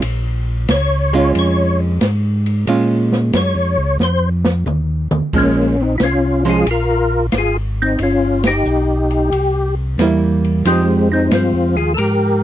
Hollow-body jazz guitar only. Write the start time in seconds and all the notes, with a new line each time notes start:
1.13 G#3 C#4 F4
2.67 G#3 C#4 F4
5.33 F3 G#3 C#4
6.45 F3 G#3 C#4
10.00 G3 A#3 E4
10.66 F3 G#3 D#4 G4